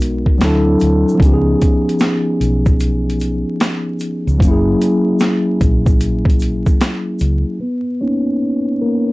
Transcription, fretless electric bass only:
0.00 0.23 B1 medium
0.42 0.75 D2 medium
0.82 1.03 D2 medium
1.20 1.54 C#2 medium
2.40 3.42 B1 medium
4.27 4.39 C#2 medium
4.40 4.74 F#1 medium
5.61 6.63 A#1 medium
7.21 7.43 C#2 medium

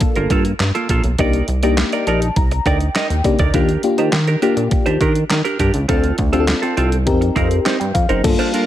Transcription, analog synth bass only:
0.16 0.28 G1 loud
0.30 0.54 G2 loud
0.60 0.72 G2 loud
0.89 1.01 A#1 medium
1.04 1.16 B1 medium
1.19 1.42 C2 loud
1.48 1.83 C2 loud
2.07 2.30 A#1 medium
2.37 2.60 C2 medium
2.66 2.89 D2 loud
3.10 3.22 D#2 medium
3.25 3.36 C#2 medium
3.39 3.51 D2 medium
3.54 3.77 D#2 loud
3.98 4.10 D#3 medium
4.12 4.36 D#3 loud
4.57 4.68 A#2 loud
4.86 4.98 D#2 medium
5.01 5.24 D#3 loud
5.30 5.42 D#3 loud
5.59 5.71 G2 medium
5.74 5.86 C#2 loud
5.89 6.13 D2 loud
6.18 6.54 D2 loud
6.77 7.08 C2 medium
7.07 7.30 F2 medium
7.36 7.60 F2 loud
7.80 7.92 G2 loud
7.95 8.07 F2 medium
8.10 8.22 F#1 medium
8.24 8.36 G1 loud

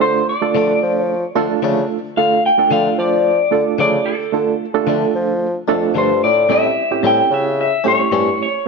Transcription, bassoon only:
0.01 0.23 D3 medium
0.43 0.49 D3 soft
0.56 0.77 D3 medium
0.83 1.25 F3 medium
1.36 1.48 D3 medium
1.63 1.85 C#3 medium
2.18 2.39 D3 medium
2.59 2.65 D3 soft
2.72 2.93 D3 medium
2.98 3.41 F3 loud
3.53 3.64 D3 loud
3.80 4.01 C#3 medium
4.33 4.55 D3 medium
4.76 4.82 D3 soft
4.88 5.09 D3 medium
5.15 5.58 F3 medium
5.69 5.93 F2 medium
5.96 6.20 G2 medium
6.24 6.48 A2 medium
6.49 6.71 A2 medium
6.91 6.97 A2 soft
7.03 7.25 A2 medium
7.30 7.73 C#3 loud
7.85 7.96 A2 medium
8.11 8.33 G2 medium

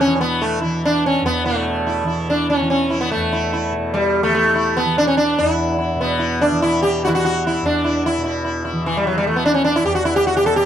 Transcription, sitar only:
0.01 0.14 C#4 medium
0.15 0.20 C#4 medium
0.21 0.42 B3 medium
0.42 0.61 A3 medium
0.61 0.81 E4 soft
0.85 1.06 D4 medium
1.06 1.25 C#4 medium
1.26 1.45 B3 medium
1.45 2.04 A3 medium
1.45 1.64 E4 soft
1.87 2.06 E4 soft
2.07 2.27 E4 soft
2.30 2.49 D4 medium
2.50 2.69 C#4 medium
2.70 3.00 C#4 medium
2.90 3.10 E4 soft
3.01 3.11 B3 medium
3.12 3.97 A3 medium
3.33 3.52 E4 soft
3.53 3.72 E4 soft
3.94 4.23 G3 medium
4.23 4.33 A3 medium
4.35 4.77 A3 medium
4.56 4.75 E4 soft
4.77 4.98 B3 medium
4.98 5.07 D4 medium
5.07 5.17 C#4 medium
5.17 5.39 D4 medium
5.39 5.76 E4 medium
5.78 5.98 E4 soft
6.01 6.42 B3 medium
6.19 6.38 E4 soft
6.41 6.62 D4 medium
6.62 6.82 E4 medium
6.83 7.03 G4 medium
7.05 7.12 E4 medium
7.05 7.08 F#4 medium
7.15 7.24 F#4 medium
7.25 7.42 F#4 medium
7.47 7.63 E4 medium
7.66 8.05 D4 medium
7.84 8.02 E4 soft
8.06 8.23 E4 medium
8.24 8.42 E4 soft
8.45 8.62 E4 soft
8.65 8.83 E4 soft
8.86 8.95 E3 medium
8.97 9.05 G3 medium
9.07 9.15 F#3 medium
9.18 9.26 G3 medium
9.27 9.35 A3 medium
9.36 9.45 B3 medium
9.46 9.54 D4 medium
9.54 9.63 C#4 medium
9.65 9.74 D4 medium
9.76 9.85 E4 medium
9.86 9.94 G4 medium
9.95 10.04 F#4 medium
10.05 10.15 E4 medium
10.16 10.25 G4 medium
10.27 10.35 F#4 medium
10.37 10.45 G4 medium
10.46 10.55 A4 medium
10.56 10.65 G4 medium

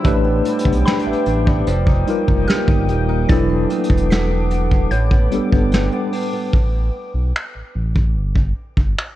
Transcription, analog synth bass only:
0.05 0.42 A1 loud
0.65 0.84 B1 loud
1.06 1.15 A1 soft
1.27 1.64 A1 loud
1.67 2.04 F1 loud
2.28 2.47 F1 medium
2.68 2.90 G1 medium
2.89 3.26 D#1 loud
3.29 3.66 E1 loud
3.90 4.87 E1 medium
4.91 5.28 A1 loud
5.32 5.40 G1 soft
5.53 5.89 G1 medium
6.53 6.91 A1 loud
7.14 7.33 B1 medium
7.55 7.63 A1 soft
7.75 8.17 A1 medium
8.16 8.53 G1 medium
8.77 8.95 G1 medium

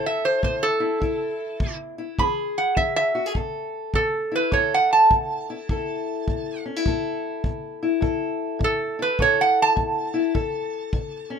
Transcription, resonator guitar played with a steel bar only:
0.06 0.25 E5 medium
0.25 0.43 C5 medium
0.44 0.63 C5 medium
0.63 1.77 A4 loud
2.19 2.57 B5 medium
2.58 2.77 F#5 medium
2.77 2.95 E5 medium
2.96 3.35 E5 medium
3.95 4.33 A4 medium
4.36 4.54 B4 medium
4.53 4.72 C#5 medium
4.74 4.92 F#5 medium
4.93 6.63 A5 medium
8.64 9.00 A4 medium
9.02 9.20 B4 medium
9.22 9.40 C#5 medium
9.41 9.59 F#5 medium
9.62 11.31 A5 medium

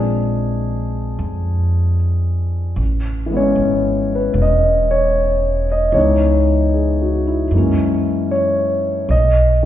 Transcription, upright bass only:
0.00 1.15 A#1 medium
1.19 2.73 F2 medium
2.76 3.52 A1 medium
3.56 4.31 G#1 medium
4.34 5.89 E1 medium
5.92 7.48 C#2 medium
7.51 9.07 F#2 medium
9.09 9.65 B1 medium

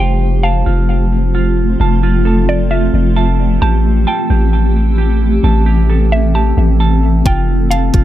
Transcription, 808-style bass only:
0.00 0.64 F1 loud
0.67 1.76 F1 loud
1.80 2.90 F1 loud
2.94 3.59 F1 loud
3.62 4.06 A1 loud
4.30 5.40 A1 loud
5.44 6.53 A1 loud
6.57 7.23 A1 loud
7.26 7.91 F1 loud
7.94 8.04 F1 loud

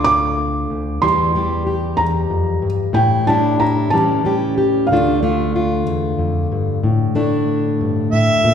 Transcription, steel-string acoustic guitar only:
0.00 0.69 D2 medium
0.00 0.98 A3 soft
0.00 0.99 D4 soft
0.00 0.99 F4 soft
0.70 1.02 D2 soft
1.02 1.97 E2 medium
1.02 2.92 E3 soft
1.02 1.35 G3 medium
1.02 1.36 G4 medium
1.35 3.26 G3 soft
1.35 1.66 G4 soft
1.67 2.92 G4 medium
1.98 2.30 E2 soft
2.30 2.62 F2 medium
2.62 2.95 G2 soft
2.93 3.91 A2 medium
2.93 3.27 E4 medium
3.27 3.92 G3 soft
3.27 3.89 D4 medium
3.27 3.58 E4 medium
3.60 3.92 E4 medium
3.92 4.89 A2 medium
3.92 4.85 E3 soft
3.92 4.24 G3 soft
3.92 4.24 C#4 soft
3.92 4.25 G4 medium
4.25 4.89 G3 medium
4.25 4.86 C#4 soft
4.25 4.57 G4 medium
4.58 4.86 G4 medium
4.91 5.87 D2 medium
4.91 8.54 D3 medium
4.91 5.21 A3 soft
4.91 5.22 D4 medium
4.91 5.23 F4 medium
5.23 6.79 A3 medium
5.23 6.80 D4 soft
5.23 5.55 F4 soft
5.56 6.80 F4 medium
5.87 6.18 E2 soft
6.19 6.51 F2 medium
6.52 6.83 G2 soft
6.83 8.12 A2 medium
7.15 8.54 A3 medium
7.15 8.54 D4 soft
7.15 8.54 E4 soft
7.81 8.12 G2 soft
8.13 8.44 A2 medium
8.44 8.54 A#2 medium

